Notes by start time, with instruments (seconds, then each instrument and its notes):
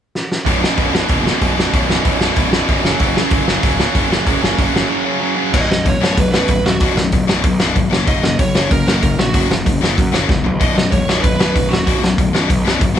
0.15 snare
0.32 snare
0.46 picked electric bass B0, distorted electric guitar B1 F#2 B2, kick, open hi-hat
0.61 distorted electric guitar B1 F#2 B2, snare
0.77 picked electric bass B0, distorted electric guitar B1 F#2 B2, kick, open hi-hat
0.92 picked electric bass B0, distorted electric guitar B1 F#2 B2, snare
1.08 picked electric bass F#1, distorted electric guitar B1 F#2 B2, kick, open hi-hat
1.24 distorted electric guitar B1 F#2 B2, snare
1.40 picked electric bass B0, distorted electric guitar B1 F#2 B2, kick, open hi-hat
1.57 picked electric bass B0, distorted electric guitar B1 F#2 B2, snare
1.73 picked electric bass B0, distorted electric guitar B1 F#2 B2, kick, open hi-hat
1.89 picked electric bass B0, distorted electric guitar B1 F#2 B2, snare
2.05 picked electric bass B0, distorted electric guitar B1 F#2 B2, kick, open hi-hat
2.21 picked electric bass B0, distorted electric guitar B1 F#2 B2, snare
2.36 picked electric bass B0, distorted electric guitar B1 F#2 B2, kick, open hi-hat
2.53 picked electric bass B0, distorted electric guitar B1 F#2 B2, snare
2.67 picked electric bass B0, distorted electric guitar B1 F#2 B2, kick, open hi-hat
2.84 picked electric bass F#1, distorted electric guitar F#2 C#3 F#3, snare
2.99 picked electric bass F#1, distorted electric guitar F#2 C#3 F#3, kick, open hi-hat
3.16 distorted electric guitar F#2 C#3 F#3, snare
3.30 picked electric bass F#1, distorted electric guitar F#2 C#3 F#3, kick, open hi-hat
3.47 picked electric bass F#1, distorted electric guitar F#2 C#3 F#3, snare
3.63 picked electric bass C#1, distorted electric guitar F#2 C#3 F#3, kick, open hi-hat
3.79 distorted electric guitar F#2 C#3 F#3, snare
3.95 picked electric bass F#1, distorted electric guitar F#2 C#3 F#3, kick, open hi-hat
4.10 picked electric bass F#1, distorted electric guitar F#2 C#3 F#3, snare
4.27 picked electric bass F#1, distorted electric guitar F#2 C#3 F#3, kick, open hi-hat
4.42 picked electric bass F#1, distorted electric guitar F#2 C#3 F#3, snare
4.58 picked electric bass F#1, distorted electric guitar F#2 C#3 F#3, kick, open hi-hat
4.74 picked electric bass F#1, distorted electric guitar F#2 C#3 F#3, snare
4.89 distorted electric guitar F#2 C#3 F#3
5.05 distorted electric guitar F#2 C#3 F#3
5.20 distorted electric guitar F#2 C#3 F#3
5.36 distorted electric guitar F#2 C#3 F#3
5.52 picked electric bass B0, distorted electric guitar B1 F#2 B2, lead electric guitar D#5, kick, crash
5.68 picked electric bass B0, distorted electric guitar B1 F#2, snare
5.85 picked electric bass E1, distorted electric guitar B1 F#2, lead electric guitar C#5, kick, open hi-hat
5.99 picked electric bass B0, distorted electric guitar B1 F#2 B2
6.03 snare
6.17 picked electric bass B0, distorted electric guitar B1 F#2, lead electric guitar B4, kick, open hi-hat
6.31 picked electric bass B0, distorted electric guitar B1 F#2, lead electric guitar B4, snare
6.36 distorted electric guitar B2
6.48 picked electric bass B0, distorted electric guitar B1 F#2, kick, open hi-hat
6.63 picked electric bass D#1, distorted electric guitar B1 F#2, lead electric guitar F#4, snare
6.80 picked electric bass B0, distorted electric guitar B1 F#2 B2, kick, open hi-hat
6.95 picked electric bass B0, distorted electric guitar B1 F#2, snare
7.12 picked electric bass B0, distorted electric guitar B1 F#2, kick, open hi-hat
7.27 picked electric bass B0, distorted electric guitar B1 F#2 B2, snare
7.44 picked electric bass B1, distorted electric guitar B1 F#2, kick, open hi-hat
7.60 picked electric bass B0, distorted electric guitar B1 F#2 B2, snare
7.75 picked electric bass G#1, distorted electric guitar B1 F#2, kick, open hi-hat
7.90 picked electric bass F#1, distorted electric guitar F#2 C#3 F#3, snare
8.06 picked electric bass F#1, distorted electric guitar F#2 C#3 F#3, lead electric guitar D#5, kick, open hi-hat
8.23 picked electric bass F#1, distorted electric guitar F#2 C#3, snare
8.39 picked electric bass B1, distorted electric guitar F#2 C#3, lead electric guitar C#5, kick, open hi-hat
8.55 picked electric bass F#1, distorted electric guitar F#2 C#3 F#3, snare
8.71 picked electric bass F#1, distorted electric guitar F#2 C#3, lead electric guitar A#4, kick, open hi-hat
8.86 picked electric bass F#1, distorted electric guitar F#2 C#3 F#3, lead electric guitar A#4, snare
9.02 picked electric bass F#1, distorted electric guitar F#2 C#3, kick, open hi-hat
9.18 picked electric bass A#1, distorted electric guitar F#2 C#3, lead electric guitar F#4, snare
9.33 picked electric bass F#1, distorted electric guitar F#2 C#3 F#3, kick, open hi-hat
9.49 picked electric bass F#1, distorted electric guitar F#2 C#3, snare
9.66 picked electric bass F#1, distorted electric guitar F#2 C#3, kick, open hi-hat
9.81 picked electric bass F#1, distorted electric guitar F#2 C#3 F#3, snare
9.98 picked electric bass F#2, distorted electric guitar F#2 C#3, kick, open hi-hat
10.12 picked electric bass F#1, distorted electric guitar F#2 C#3 F#3, snare
10.28 picked electric bass E1, distorted electric guitar F#2 C#3, kick, snare
10.44 picked electric bass B1, distorted electric guitar F#2 C#3, floor tom
10.60 picked electric bass B0, distorted electric guitar B1 F#2 B2, lead electric guitar D#5, kick, open hi-hat
10.75 picked electric bass B0, distorted electric guitar B1 F#2, snare
10.91 picked electric bass E1, distorted electric guitar B1 F#2, lead electric guitar C#5, kick, open hi-hat
11.07 picked electric bass B0, distorted electric guitar B1 F#2 B2, snare
11.21 picked electric bass B0, distorted electric guitar B1 F#2, lead electric guitar B4, kick, open hi-hat
11.37 picked electric bass B0, distorted electric guitar B1 F#2 B2, lead electric guitar B4, snare
11.55 picked electric bass B0, distorted electric guitar B1 F#2, kick, open hi-hat
11.69 picked electric bass D#1, distorted electric guitar B1 F#2, lead electric guitar F#4
11.73 snare
11.87 picked electric bass B0, distorted electric guitar B1 F#2 B2, kick, open hi-hat
12.01 picked electric bass B0, distorted electric guitar B1 F#2, snare
12.18 picked electric bass B0, distorted electric guitar B1 F#2, kick, open hi-hat
12.33 picked electric bass B0, distorted electric guitar B1 F#2 B2, snare
12.48 distorted electric guitar B1 F#2, picked electric bass B1, kick, open hi-hat
12.64 picked electric bass B0, distorted electric guitar B1 F#2 B2, snare
12.79 picked electric bass G#1, distorted electric guitar B1 F#2, kick, open hi-hat
12.95 distorted electric guitar F#2 C#3 F#3